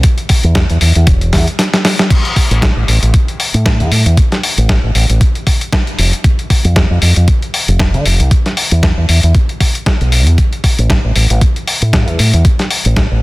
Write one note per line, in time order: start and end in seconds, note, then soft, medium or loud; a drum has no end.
0.03 kick loud
0.03 closed hi-hat loud
0.18 closed hi-hat soft
0.29 kick medium
0.29 open hi-hat loud
0.44 0.64 E2 loud
0.44 closed hi-hat soft
0.55 kick loud
0.55 snare loud
0.55 closed hi-hat loud
0.70 0.79 E2 loud
0.70 closed hi-hat soft
0.81 0.93 E2 medium
0.81 open hi-hat medium
0.95 1.05 E2 medium
0.95 closed hi-hat soft
1.07 1.35 E1 medium
1.07 kick loud
1.07 closed hi-hat loud
1.21 closed hi-hat soft
1.33 1.45 E2 medium
1.33 kick medium
1.33 snare medium
1.33 open hi-hat loud
1.48 closed hi-hat soft
1.59 snare medium
1.59 closed hi-hat loud
1.74 snare medium
1.74 closed hi-hat soft
1.85 snare loud
1.85 open hi-hat medium
1.99 snare medium
1.99 closed hi-hat soft
2.10 kick loud
2.10 closed hi-hat medium
2.10 crash medium
2.25 closed hi-hat soft
2.36 kick medium
2.36 open hi-hat loud
2.51 2.71 A1 medium
2.51 closed hi-hat medium
2.62 kick loud
2.62 snare loud
2.62 closed hi-hat medium
2.77 2.86 A1 medium
2.88 3.00 A1 medium
2.88 open hi-hat medium
3.02 3.12 A1 medium
3.02 closed hi-hat soft
3.14 kick loud
3.14 closed hi-hat medium
3.28 closed hi-hat soft
3.40 open hi-hat loud
3.54 3.82 A2 medium
3.54 closed hi-hat medium
3.66 kick loud
3.66 snare loud
3.66 closed hi-hat medium
3.80 3.90 E2 loud
3.80 closed hi-hat soft
3.91 4.04 A2 loud
3.91 open hi-hat medium
4.06 4.15 E2 medium
4.06 closed hi-hat medium
4.17 kick loud
4.17 closed hi-hat medium
4.32 snare soft
4.32 closed hi-hat soft
4.43 open hi-hat loud
4.58 4.78 A1 medium
4.58 closed hi-hat soft
4.69 kick loud
4.69 snare loud
4.69 closed hi-hat medium
4.84 4.93 A1 loud
4.95 5.07 A1 medium
4.95 open hi-hat medium
5.09 5.19 A1 medium
5.09 closed hi-hat soft
5.21 kick loud
5.21 closed hi-hat medium
5.35 closed hi-hat soft
5.47 kick medium
5.47 open hi-hat loud
5.61 closed hi-hat medium
5.73 kick loud
5.73 snare loud
5.73 closed hi-hat medium
5.87 closed hi-hat soft
5.99 6.11 F1 medium
5.99 open hi-hat medium
6.13 closed hi-hat soft
6.24 kick loud
6.24 closed hi-hat medium
6.39 closed hi-hat soft
6.50 kick medium
6.50 open hi-hat loud
6.65 6.85 F2 medium
6.65 closed hi-hat medium
6.76 kick loud
6.76 snare loud
6.76 closed hi-hat medium
6.90 7.00 F2 loud
7.02 7.14 F2 medium
7.02 open hi-hat medium
7.16 7.26 F2 medium
7.16 closed hi-hat soft
7.28 kick loud
7.28 closed hi-hat medium
7.42 closed hi-hat soft
7.54 open hi-hat loud
7.68 7.95 F1 medium
7.68 closed hi-hat soft
7.79 kick loud
7.79 snare loud
7.79 closed hi-hat medium
7.94 8.03 D3 loud
7.94 closed hi-hat soft
8.05 8.17 F1 loud
8.05 open hi-hat medium
8.20 8.29 C2 medium
8.20 closed hi-hat soft
8.31 kick loud
8.31 closed hi-hat medium
8.46 snare soft
8.46 closed hi-hat soft
8.57 open hi-hat loud
8.71 8.92 E2 medium
8.71 closed hi-hat soft
8.83 kick loud
8.83 snare loud
8.83 closed hi-hat medium
8.97 9.07 E2 loud
9.09 9.21 E2 medium
9.09 open hi-hat medium
9.23 9.33 E2 medium
9.23 closed hi-hat soft
9.35 kick loud
9.35 closed hi-hat medium
9.49 closed hi-hat soft
9.60 kick medium
9.60 open hi-hat loud
9.75 closed hi-hat soft
9.86 kick loud
9.86 snare loud
9.86 closed hi-hat medium
10.01 10.27 B1 medium
10.01 closed hi-hat soft
10.12 open hi-hat medium
10.27 10.36 E2 loud
10.27 closed hi-hat soft
10.38 kick loud
10.38 closed hi-hat medium
10.53 closed hi-hat soft
10.64 kick medium
10.64 open hi-hat loud
10.78 10.98 A1 medium
10.78 closed hi-hat soft
10.90 kick loud
10.90 snare loud
10.90 closed hi-hat medium
11.04 11.14 A1 medium
11.16 11.28 A1 medium
11.16 open hi-hat medium
11.30 11.40 A1 medium
11.30 closed hi-hat soft
11.41 kick loud
11.41 closed hi-hat medium
11.56 closed hi-hat soft
11.68 open hi-hat loud
11.82 12.08 A2 medium
11.82 closed hi-hat soft
11.93 kick loud
11.93 snare loud
11.93 closed hi-hat medium
12.08 12.17 E2 medium
12.08 closed hi-hat soft
12.19 12.31 A2 loud
12.19 open hi-hat medium
12.34 12.43 E2 medium
12.34 closed hi-hat soft
12.45 kick loud
12.45 closed hi-hat medium
12.59 snare soft
12.59 closed hi-hat soft
12.71 open hi-hat loud
12.85 13.05 A1 medium
12.85 closed hi-hat medium
12.96 kick loud
12.96 snare loud
12.96 closed hi-hat medium
13.11 13.21 A1 loud